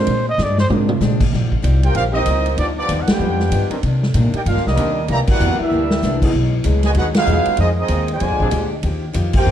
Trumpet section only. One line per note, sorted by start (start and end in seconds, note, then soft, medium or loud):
1.84 1.95 F4 medium
1.84 1.95 A#4 medium
1.84 1.95 C5 medium
1.84 1.96 G5 loud
1.96 2.05 C4 medium
1.96 2.05 G4 medium
1.96 2.05 A#4 medium
1.96 2.05 F5 loud
2.14 2.55 C4 medium
2.14 2.55 G4 medium
2.14 2.55 A#4 medium
2.14 2.55 D#5 loud
2.59 2.68 B3 medium
2.59 2.68 F4 medium
2.59 2.68 G4 medium
2.59 2.68 D5 medium
2.79 2.99 B3 medium
2.79 3.00 F4 medium
2.79 3.00 G4 medium
2.79 2.99 D5 loud
3.01 3.09 F#5 medium
3.11 3.73 F4 medium
3.11 3.73 B4 medium
3.11 3.73 D5 medium
3.11 3.73 G5 loud
4.36 4.41 D#4 medium
4.36 4.41 A#4 medium
4.36 4.42 D5 medium
4.36 4.41 G5 medium
4.48 4.65 D4 medium
4.48 4.65 G4 medium
4.48 4.65 A#4 medium
4.48 4.65 F5 loud
4.68 5.07 A#3 medium
4.68 5.07 G4 medium
4.68 5.07 D5 medium
4.68 5.07 D#5 loud
5.11 5.19 G4 loud
5.11 5.19 D5 medium
5.11 5.20 E5 medium
5.11 5.20 A#5 loud
5.31 5.59 E4 loud
5.31 5.59 A#4 loud
5.31 5.59 D5 loud
5.31 5.58 F#5 loud
5.64 6.24 D4 medium
5.64 6.24 G4 medium
5.64 6.24 A#4 medium
5.64 6.24 E5 medium
6.85 6.91 F#4 medium
6.85 6.91 B4 medium
6.85 6.91 D#5 medium
6.85 6.91 G#5 loud
6.98 7.06 D#4 medium
6.98 7.06 G#4 medium
6.98 7.06 B4 medium
6.98 7.06 F#5 loud
7.18 7.57 D#4 medium
7.18 7.57 G#4 medium
7.18 7.57 B4 medium
7.18 7.57 F5 loud
7.61 7.69 C4 medium
7.61 7.69 F4 medium
7.61 7.69 G#4 medium
7.61 7.69 D#5 medium
7.80 8.08 C4 medium
7.80 8.08 F4 medium
7.80 8.08 G#4 medium
7.80 8.08 D#5 medium
8.13 8.70 F4 medium
8.13 8.70 C5 medium
8.13 8.70 D5 medium
8.13 8.70 G#5 loud
9.37 9.51 F4 medium
9.37 9.51 A#4 loud
9.37 9.51 C5 loud
9.37 9.51 G5 loud